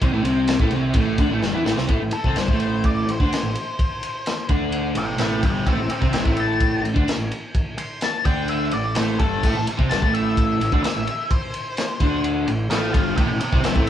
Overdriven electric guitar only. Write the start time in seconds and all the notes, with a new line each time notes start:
0.02 C3 C4
0.13 A2 A3
0.23 C3 C4
0.60 A2 A3
0.73 C3 C4
0.96 A2 A3
1.19 D3 D4
1.31 A2 A3
1.42 G2 G3
1.53 E3 E4
1.64 A2 A3
1.76 C3 C4
1.88 A2 A3
2.03 A2
2.15 muted overdriven electric guitar stroke
2.26 C3 C4
2.36 G2 G3
2.49 A2 A3
3.09 A2
3.20 D3 D4
3.32 muted overdriven electric guitar stroke
3.42 A2
4.49 D3 D4
4.96 A2
5.18 A2 A3
5.42 G2 G3
5.66 A2 A3
5.78 A2
5.88 muted overdriven electric guitar stroke
6.01 C3 C4
6.12 G2 G3
6.23 A2 A3
6.83 A2
6.94 D3 D4
7.06 muted overdriven electric guitar stroke
7.17 A2
8.25 D3 D4
8.74 A2
8.96 A2 A3
9.19 G2 G3
9.44 A2 A3
9.56 A2
9.67 muted overdriven electric guitar stroke
9.78 C3 C4
9.90 G2 G3
10.01 A2 A3
10.62 A2
10.72 D3 D4
10.85 muted overdriven electric guitar stroke
10.96 A2
12.01 D3 D4
12.48 A2
12.70 A2 A3
12.94 G2 G3
13.16 A2 A3
13.29 A2
13.41 muted overdriven electric guitar stroke
13.53 C3 C4
13.63 G2 G3
13.74 A2 A3